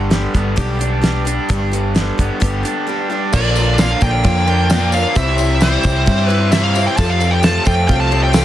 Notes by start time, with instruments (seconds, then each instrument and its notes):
Already playing: fingered electric bass G1, overdriven electric guitar G2 D3 G3, steel-string acoustic guitar B3 D4 G4
0.10 steel-string acoustic guitar G3 B3 D4 G4, snare, closed hi-hat
0.34 fingered electric bass G1, steel-string acoustic guitar G3 B3 D4 G4, kick, closed hi-hat
0.56 fingered electric bass B1, steel-string acoustic guitar G2 D3 G3 B3 D4 G4, kick, closed hi-hat
0.79 steel-string acoustic guitar G3 B3 D4 G4, closed hi-hat
1.02 steel-string acoustic guitar G3 B3 D4 G4, snare, closed hi-hat
1.25 steel-string acoustic guitar G3 B3 D4 G4, closed hi-hat
1.49 fingered electric bass G1, steel-string acoustic guitar G2 D3 G3 B3 D4 G4, kick, closed hi-hat
1.72 overdriven electric guitar D3, steel-string acoustic guitar G3 B3 D4 G4, closed hi-hat
1.95 steel-string acoustic guitar G3 B3 D4 G4, snare, closed hi-hat
2.18 fingered electric bass G1, steel-string acoustic guitar G3 B3 D4 G4, kick, closed hi-hat
2.40 fingered electric bass G1, steel-string acoustic guitar G2 D3 G3 B3 D4 G4, kick, closed hi-hat
2.63 steel-string acoustic guitar G3 B3 D4 G4, closed hi-hat
2.87 steel-string acoustic guitar G3 B3 D4 G4
3.09 steel-string acoustic guitar G3 B3 D4 G4
3.32 fingered electric bass A#1, steel-string acoustic guitar A#2 D3 F3 A#3 D4 A#4, accordion D4 F4 A#4, upright piano F4 A#4 D5, overdriven electric guitar F4, lead electric guitar D5, kick, crash, tambourine
3.56 steel-string acoustic guitar F3 A#3 D4 A#4, tambourine, crash
3.78 steel-string acoustic guitar A#2 D3 F3 A#3 D4 A#4, upright piano F4 A#4 D5, lead electric guitar F5, snare, tambourine, crash
3.82 overdriven electric guitar F4
4.01 fingered electric bass A#1, steel-string acoustic guitar F3 A#3 D4 A#4, lead electric guitar G5, kick, tambourine, crash
4.24 fingered electric bass F2, steel-string acoustic guitar F3 A#3 D4 A#4, upright piano F4 A#4 D5, kick, tambourine, crash
4.47 steel-string acoustic guitar F3 A#3 D4 A#4, overdriven electric guitar F4, crash
4.69 steel-string acoustic guitar A#2 D3 F3 A#3 D4 A#4, upright piano F4 A#4 D5, overdriven electric guitar F4, snare, tambourine, crash
4.92 steel-string acoustic guitar F3 A#3 D4 A#4, overdriven electric guitar F4, lead electric guitar F5, tambourine, crash
5.15 fingered electric bass C2, steel-string acoustic guitar C3 G3 C4 E4 C5, overdriven electric guitar E3, accordion E4 G4 C5, upright piano G4 C5 E5, lead electric guitar E5, kick, tambourine, crash
5.38 steel-string acoustic guitar C4 E4 C5, tambourine, crash
5.60 steel-string acoustic guitar C3 G3 C4 E4 C5, overdriven electric guitar E3, upright piano G4 C5 E5, lead electric guitar C5, snare, tambourine, crash
5.83 fingered electric bass C2, steel-string acoustic guitar C4 C5, kick, tambourine, crash
6.06 fingered electric bass G2, steel-string acoustic guitar G3 C4 E4 C5, upright piano G4 C5 E5, kick, tambourine, crash
6.25 lead electric guitar B4, steel-string acoustic guitar C5
6.30 overdriven electric guitar G3, steel-string acoustic guitar C4 E4, crash
6.52 steel-string acoustic guitar C3 G3 C4 E4 C5, overdriven electric guitar E3, upright piano G4 C5 E5, lead electric guitar E5, snare, tambourine, crash
6.63 lead electric guitar F5
6.74 overdriven electric guitar G3, steel-string acoustic guitar C4 E4 C5, tambourine, crash
6.87 lead electric guitar G5
6.97 overdriven electric guitar F2 C3 A3 F4, fingered electric bass F2, steel-string acoustic guitar F3 C4 G4 A4, accordion F4 G4 A4, upright piano G4 A4 F5, lead electric guitar A5, kick, tambourine, crash
7.10 lead electric guitar F5
7.20 steel-string acoustic guitar C4 G4 A4, tambourine, crash
7.31 lead electric guitar G5
7.42 steel-string acoustic guitar F3 C4 G4 A4, overdriven electric guitar A3 F4, upright piano G4 A4 F5, lead electric guitar A5, snare, tambourine, crash
7.65 fingered electric bass F2, steel-string acoustic guitar C4 G4 A4, lead electric guitar G5, kick, tambourine, crash
7.88 fingered electric bass C2, steel-string acoustic guitar F3 C4 G4 A4, upright piano G4 A4 F5, lead electric guitar G5, kick, tambourine, crash
8.00 lead electric guitar A5
8.11 overdriven electric guitar F3 A3 F4, steel-string acoustic guitar C4 G4 A4, crash
8.24 lead electric guitar G5
8.33 overdriven electric guitar F2 C3 A3 F4, steel-string acoustic guitar F3 C4 G4 A4, upright piano G4 A4 F5, snare, tambourine, crash